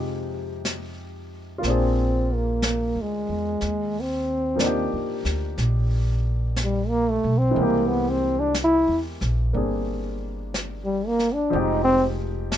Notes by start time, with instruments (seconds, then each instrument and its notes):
Already playing: upright bass F2, grand piano C3 F3 G#3 D#4 G4
0.65 brush sweep, snare, hi-hat pedal
1.58 grand piano A#3 F4
1.63 upright bass A#1, grand piano C4, brush sweep, snare
1.67 trombone C4, grand piano D4 G#4
2.35 trombone A#3
2.62 brush sweep, snare, hi-hat pedal
2.95 upright bass D2
3.01 trombone G#3
3.29 upright bass E2
3.61 upright bass D#2, brush sweep, snare
4.00 trombone C4
4.56 grand piano F3 A#3, brush sweep, snare, hi-hat pedal
4.60 grand piano D4 D#4
4.66 grand piano G4
4.93 upright bass F2
5.25 upright bass D2, snare
5.58 upright bass A#1, brush sweep, snare
6.56 brush sweep, snare, hi-hat pedal
6.63 trombone G3
6.88 trombone A#3
7.10 trombone A3
7.24 upright bass B1
7.38 trombone C4
7.51 grand piano E3 G#3
7.56 upright bass C2, grand piano A#3 C4, brush sweep
7.62 trombone A#3, grand piano G4
7.88 trombone B3
8.10 trombone C4
8.40 trombone D4
8.54 brush sweep, snare, hi-hat pedal
8.64 trombone E4
8.88 upright bass E2
9.21 upright bass A#1, snare
9.53 upright bass G1, grand piano A#3 C4 D4 G#4, brush sweep
10.54 brush sweep, snare, hi-hat pedal
10.84 trombone G3
11.07 trombone A#3
11.19 snare
11.34 trombone D4
11.50 upright bass F1, grand piano F3 G#3 C4, brush sweep
11.55 grand piano D#4 G4
11.59 trombone D#4
11.84 trombone C4
12.52 brush sweep, snare, hi-hat pedal